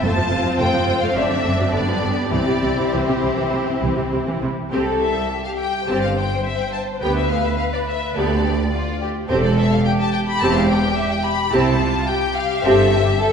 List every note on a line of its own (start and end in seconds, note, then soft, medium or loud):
0.03 0.08 F1 medium
0.03 0.09 F2 medium
0.03 0.09 A3 medium
0.03 1.71 C4 soft
0.03 1.14 F4 medium
0.03 1.14 C5 medium
0.03 0.58 A5 medium
0.17 0.23 F2 soft
0.17 0.23 F3 soft
0.31 0.36 F1 soft
0.31 0.37 F2 soft
0.31 0.37 C3 soft
0.45 0.51 F2 soft
0.45 0.51 F3 soft
0.59 0.65 F1 medium
0.59 0.65 F2 medium
0.59 0.65 A3 medium
0.59 1.01 G5 medium
0.73 0.79 F2 soft
0.73 0.79 F3 soft
0.87 0.93 F1 soft
0.87 0.93 F2 soft
0.87 0.93 C3 soft
1.02 1.08 F2 medium
1.02 1.07 A3 medium
1.02 1.16 F5 medium
1.15 1.22 F#1 soft
1.15 1.22 F#2 soft
1.15 1.21 F#3 soft
1.15 2.34 D4 soft
1.15 1.74 D5 soft
1.15 1.74 E5 medium
1.30 1.37 F#2 soft
1.30 1.36 D3 soft
1.44 1.50 F#1 medium
1.44 1.51 F#2 medium
1.44 1.50 A3 soft
1.58 1.66 F#2 soft
1.58 1.64 F#3 soft
1.72 1.80 G1 soft
1.72 1.80 G2 soft
1.72 1.79 D3 soft
1.72 2.32 B3 soft
1.72 4.51 G4 soft
1.72 2.31 D5 medium
1.88 1.95 G2 medium
1.88 1.94 F3 medium
2.02 2.09 G1 soft
2.02 2.10 G2 soft
2.02 2.09 D3 soft
2.32 2.39 C2 soft
2.32 2.39 C3 soft
2.32 2.38 E3 medium
2.32 4.47 C4 soft
2.32 4.47 E4 soft
2.32 2.92 D5 medium
2.47 2.53 C3 soft
2.47 2.54 C3 soft
2.62 2.69 C2 soft
2.62 2.69 C3 soft
2.78 2.84 C3 soft
2.78 2.85 C3 soft
2.93 2.99 C2 medium
2.93 3.00 C3 medium
2.93 2.99 E3 medium
2.93 4.13 C5 soft
3.08 3.14 C3 soft
3.08 3.15 C3 soft
3.23 3.29 C2 soft
3.23 3.29 C3 soft
3.37 3.44 C3 medium
3.37 3.44 E3 medium
3.52 3.59 C2 soft
3.52 3.59 C3 soft
3.68 3.74 C3 soft
3.68 3.75 C3 soft
3.83 3.89 C2 medium
3.83 3.90 C3 medium
3.83 3.89 E3 soft
3.97 4.03 C3 soft
3.97 4.04 C3 soft
4.13 4.19 C2 soft
4.13 4.19 C3 soft
4.28 4.34 C3 medium
4.28 4.34 E3 soft
4.42 4.49 C2 soft
4.42 4.48 C3 soft
4.42 4.49 C3 soft
4.72 5.20 C2 soft
4.72 5.21 C2 soft
4.72 4.99 C4 soft
4.72 4.99 G4 soft
4.72 5.26 A4 medium
4.72 4.81 C5 medium
5.02 5.44 E5 medium
5.31 5.88 G4 soft
5.45 5.51 F5 medium
5.58 5.87 G5 medium
5.87 6.35 G1 medium
5.87 6.35 G2 medium
5.87 6.14 C4 soft
5.87 6.14 G4 soft
5.87 7.02 C5 soft
5.87 6.02 A5 medium
6.02 6.16 F5 medium
6.16 6.44 G5 medium
6.44 6.59 E5 medium
6.59 6.73 G5 medium
6.72 6.80 A5 medium
7.01 7.49 D2 medium
7.01 7.29 B3 soft
7.01 7.29 G4 soft
7.01 8.13 B4 medium
7.01 7.16 G5 medium
7.16 7.30 E5 medium
7.29 7.44 F5 medium
7.45 7.59 E5 medium
7.58 7.64 F5 medium
7.73 7.79 D5 medium
7.87 8.15 E5 medium
8.15 8.63 D2 medium
8.15 8.42 B3 soft
8.15 8.42 G4 soft
8.15 8.44 A4 soft
8.15 8.99 D5 medium
8.44 8.52 G4 soft
8.72 9.00 F4 medium
9.01 9.09 G4 medium
9.28 9.76 E1 medium
9.28 9.76 E2 medium
9.28 9.55 C4 soft
9.28 9.55 G4 soft
9.28 9.83 A4 medium
9.28 9.42 C5 medium
9.44 9.57 D5 medium
9.57 9.71 E5 medium
9.72 9.86 F5 medium
9.84 11.48 G4 medium
9.84 9.91 G5 medium
10.00 10.13 A5 medium
10.14 10.19 G5 medium
10.28 10.41 B5 medium
10.41 10.87 E1 medium
10.41 10.87 E2 medium
10.41 10.67 C4 medium
10.41 10.67 G4 soft
10.41 10.56 A5 medium
10.56 10.70 F5 medium
10.70 10.97 G5 medium
10.97 11.11 E5 medium
11.12 11.25 G5 medium
11.24 11.52 B5 medium
11.52 11.99 C2 medium
11.52 11.99 C3 medium
11.52 11.78 C4 medium
11.52 11.80 E4 medium
11.52 11.78 G4 soft
11.52 12.09 A5 medium
11.81 12.09 F4 medium
12.08 12.63 G4 medium
12.08 12.36 G5 medium
12.36 12.64 F5 medium
12.63 13.09 G1 medium
12.63 13.10 G2 medium
12.63 12.89 C4 medium
12.63 12.89 G4 medium
12.63 12.91 A4 medium
12.63 13.32 E5 medium
12.91 13.19 G4 medium
13.18 13.32 A4 medium